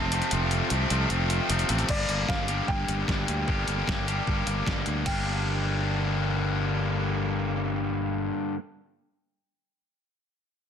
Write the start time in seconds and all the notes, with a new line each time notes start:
Already playing: F1 F2 C3 F3 A3 C4 A5
0.12 F2 C3 F3 A3 C4, closed hi-hat
0.22 closed hi-hat
0.31 F1 F2 C3 F3 A3 C4, closed hi-hat
0.51 closed hi-hat
0.70 C2 F2 C3 F3 A3 C4, closed hi-hat
0.90 C2 F2 C3 F3 A3 C4, closed hi-hat
1.10 F1 F2 C3 F3 A3 C4, closed hi-hat
1.30 closed hi-hat
1.50 F1 F2 C3 F3 A3 C4, closed hi-hat
1.59 closed hi-hat
1.69 A1 F2 C3 F3 A3 C4, closed hi-hat
1.79 closed hi-hat
1.89 G1 G2 D3 G3 A#3 D4 G4 D5, kick, crash
2.09 G1, closed hi-hat
2.29 G1 F5, kick, snare
2.48 G2 D3 G3 A#3 D4 G4, closed hi-hat
2.68 G1 G5, kick
2.88 G1, closed hi-hat
3.08 G1, kick, snare
3.28 D2, closed hi-hat
3.48 G1 G2 D3 G3 A#3 D4 G4, kick
3.68 G1, closed hi-hat
3.87 G1, kick, snare
4.07 G2 D3 G3 A#3 D4 G4, closed hi-hat
4.27 G1, kick
4.47 G1, closed hi-hat
4.67 G1, kick, snare
4.86 D2, closed hi-hat
5.05 G1 G2 D3 G3 A#3 G5, kick, ride
5.09 D4